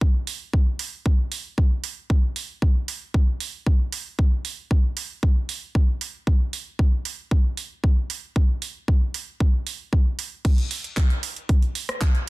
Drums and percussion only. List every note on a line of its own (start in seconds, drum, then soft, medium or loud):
0.01 kick loud
0.27 open hi-hat loud
0.53 kick medium
0.79 open hi-hat medium
1.06 kick loud
1.32 open hi-hat medium
1.58 kick medium
1.84 open hi-hat medium
2.10 kick loud
2.36 open hi-hat medium
2.62 kick medium
2.88 open hi-hat medium
3.14 kick loud
3.40 open hi-hat medium
3.66 kick medium
3.92 open hi-hat medium
4.19 kick loud
4.45 open hi-hat medium
4.71 kick medium
4.97 open hi-hat medium
5.23 kick loud
5.49 open hi-hat medium
5.75 kick medium
6.01 open hi-hat medium
6.27 kick loud
6.53 open hi-hat medium
6.79 kick medium
7.05 open hi-hat medium
7.31 kick loud
7.57 open hi-hat medium
7.84 kick medium
8.10 open hi-hat medium
8.36 kick loud
8.62 open hi-hat medium
8.88 kick medium
9.14 open hi-hat medium
9.40 kick loud
9.67 open hi-hat medium
9.93 kick medium
10.19 open hi-hat medium
10.45 kick loud
10.45 closed hi-hat medium
10.45 crash loud
10.58 closed hi-hat soft
10.71 open hi-hat loud
10.84 closed hi-hat soft
10.97 kick loud
10.97 clap loud
10.97 closed hi-hat medium
11.10 closed hi-hat soft
11.23 open hi-hat medium
11.36 closed hi-hat soft
11.49 kick loud
11.49 closed hi-hat medium
11.62 closed hi-hat soft
11.75 open hi-hat loud
11.89 cross-stick medium
11.89 closed hi-hat soft
12.01 kick loud
12.01 clap loud
12.01 closed hi-hat medium
12.15 closed hi-hat soft